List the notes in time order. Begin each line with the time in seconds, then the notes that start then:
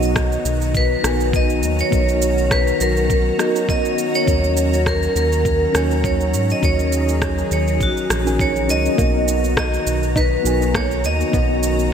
Already playing: B1 D#3 F#3 B3 D#4 F#4 A#4 D#5 A#5
0.03 cabasa
0.16 kick, cross-stick, cabasa
0.32 cabasa
0.45 B1, cabasa
0.62 cabasa
0.75 B4, kick, cabasa
1.02 B1 B3 D#4 F#4 A#4 G#5, cross-stick, cabasa
1.20 cabasa
1.33 D#5, kick, cabasa
1.50 cabasa
1.63 D#2, cabasa
1.79 C#5, cabasa
1.90 B1 B3 C#4 D#4 F#4 A#4, kick, cabasa
1.94 D#5
2.09 cabasa
2.22 cabasa
2.38 cabasa
2.51 B4, kick, cross-stick, cabasa
2.67 cabasa
2.81 B1 A#4, cabasa
2.97 cabasa
3.10 kick, cabasa
3.38 B3 D#4 F#4 A#4 D#5, cross-stick, cabasa
3.56 cabasa
3.68 B3 D#4 F#4 A#4 D#5, kick, cabasa
3.85 cabasa
3.98 cabasa
4.15 C#5, cabasa
4.25 D#2 D#3 F#3 C#4 D#4 F#4 A#4 D#5, kick, cabasa
4.44 cabasa
4.57 cabasa
4.74 cabasa
4.86 A#4, kick, cross-stick, cabasa
5.03 cabasa
5.16 D#2 A#4, cabasa
5.32 cabasa
5.45 kick, cabasa
5.73 D#2 C#4 D#4 F#4 A#4 C#5, cross-stick, cabasa
5.77 G#5
5.91 cabasa
6.04 C#5, kick, cabasa
6.21 cabasa
6.34 G#2, cabasa
6.50 D#5, cabasa
6.61 D#2 C#4 D#4 F#4 G#4 A#4 C#5 D#5, kick, cabasa
6.79 cabasa
6.92 cabasa
7.09 cabasa
7.22 kick, cross-stick, cabasa
7.38 cabasa
7.51 D#2 C#5, cabasa
7.68 cabasa
7.80 A#1 F#4, kick, cabasa
7.97 cabasa
8.10 A#1, cross-stick, cabasa
8.25 C#4 D#4 F#4 A#4 G#5, cabasa
8.39 C#5, kick, cabasa
8.56 cabasa
8.68 C#2 C#4 D#4 F#4 A#4 C#5 D#5, cabasa
8.86 cabasa
8.96 B1 D#3 F#3 A#3 B3 D#4 F#4 A#4 A#5, kick, cabasa
9.00 D#5
9.28 cabasa
9.44 cabasa
9.57 B3 D#5, kick, cross-stick, cabasa
9.74 cabasa
9.86 B1, cabasa
10.03 cabasa
10.16 D#4 B4, kick, cabasa
10.43 B1 B3 D#4 F#4 A#4 G#5, cabasa
10.62 cabasa
10.75 A#3 C#5, kick, cross-stick, cabasa
10.91 cabasa
11.04 D#2 D#5, cabasa
11.21 cabasa
11.31 B1 B3 C#4 D#4 F#4 A#4 D#5, kick, cabasa
11.63 cabasa
11.79 cabasa